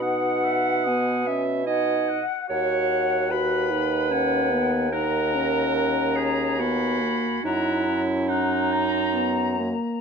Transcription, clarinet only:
\new Staff \with { instrumentName = "Clarinet" } { \time 3/4 \key dis \phrygian \tempo 4 = 73 fis''4. e''8 dis''8 r8 | cis''4 b'2 | ais'4. gis'8 fis'4 | e'4 dis'4. r8 | }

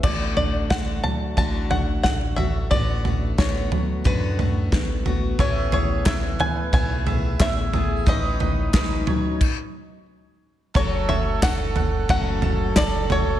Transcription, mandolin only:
\new Staff \with { instrumentName = "Mandolin" } { \time 4/4 \key b \dorian \tempo 4 = 90 r1 | r1 | e'8 gis'8 e'8 b'8 e'8 e''8 e'8 gis'8 | dis'8 b'8 dis'8 cis''8 r2 |
a'8 cis''8 a'8 fis''8 a'8 a''8 a'8 cis''8 | }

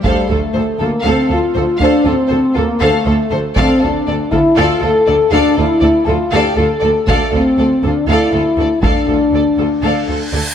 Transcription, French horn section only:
\new Staff \with { instrumentName = "French horn section" } { \time 7/8 \key d \minor \tempo 4 = 120 g8 a4 bes8 c'8 f'4 | d'8 c'4 bes8 a4. | c'8 d'4 e'8 f'8 a'4 | d'8 e'4 f'8 g'8 a'4 |
a8 c'4 d'8 e'4. | d'2. r8 | }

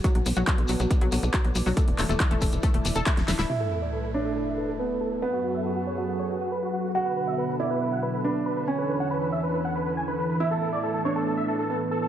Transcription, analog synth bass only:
\new Staff \with { instrumentName = "Analog synth bass" } { \clef bass \time 4/4 \key a \major \tempo 4 = 139 r16 b,,16 b,,16 b,,16 r16 b,,16 b,,16 b,,16 r16 b,,16 b,,16 b,,16 r16 b,,16 b,,16 b,,16 | r16 e,,16 e,,16 e,,16 r16 e,,16 e,,16 e,,16 r16 e,,16 e,,16 e,,16 r16 e,,16 e,,16 d,,16 | r1 | r1 |
r1 | r1 | r1 | }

